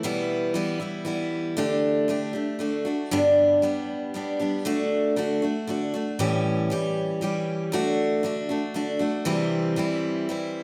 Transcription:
0.03 E2 B2 E3 G3 B3 E4
0.54 E3 G3 B3 E4
0.80 E3 G3 B3 E4
1.05 E3 G3 B3 E4
1.57 D3 A3 D4 G4
2.08 D3 A3 D4 G4
2.33 A3 D4 G4
2.59 D3 A3 D4 F#4
2.85 A3 D4 F#4
3.11 G2 D3 G3 B3 D4 G4
3.62 G3 B3 D4 G4
4.14 G3 B3 D4 G4
4.40 G3 B3 D4 G4
4.65 D3 A3 D4 F#4
5.16 D3 A3 D4 F#4
5.42 A3 D4 F#4
5.67 D3 A3 D4 F#4
5.94 A3 D4 F#4
6.19 A2 E3 G3 C#4 G4
6.70 E3 G3 C#4 G4
7.21 E3 G3 C#4 G4
7.72 D3 A3 D4 F#4
8.23 D3 A3 D4 F#4
8.49 A3 D4 F#4
8.74 D3 A3 D4 F#4
8.99 A3 D4 F#4
9.25 C3 E3 G3 C4 E4
9.76 E3 G3 C4 E4
10.29 E3 G3 C4 E4

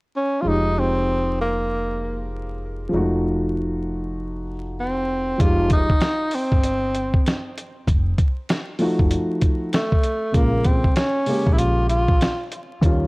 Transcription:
0.16 C#4
0.41 F3 G#3 F4
0.45 F1 D#4
0.49 G4
0.79 C4
1.41 A#3
2.89 F3 G#3
2.93 F1 D#4 F#4
2.98 A3
4.80 C4
5.38 F1 F3 G#3 D#4 F4 G4, kick, closed hi-hat
5.70 D#4, kick, closed hi-hat
5.89 G#1, kick
6.00 snare, closed hi-hat
6.31 C4, open hi-hat
6.52 G1, kick
6.64 closed hi-hat
6.95 closed hi-hat
7.14 kick
7.26 snare, closed hi-hat
7.58 closed hi-hat
7.87 F1, kick, closed hi-hat
8.18 kick, closed hi-hat
8.49 snare, closed hi-hat
8.79 F3 A3 D#4 F#4, open hi-hat
8.99 F#1, kick
9.11 closed hi-hat
9.41 kick, closed hi-hat
9.73 A3, snare, closed hi-hat
9.92 kick
10.04 closed hi-hat
10.32 A#1 C#3 G#3 A#3 F4, kick, closed hi-hat
10.36 A#3
10.64 C4, kick, closed hi-hat
10.84 C2, kick
10.96 C#4, snare, closed hi-hat
11.26 C#3 G#3 A#3 G4, open hi-hat
11.47 A#1, kick
11.53 E4
11.58 F4, closed hi-hat
11.90 F4, closed hi-hat
12.09 kick
12.21 snare, closed hi-hat
12.52 closed hi-hat
12.81 D#2 D#3 G3 C#4 F4, kick, closed hi-hat

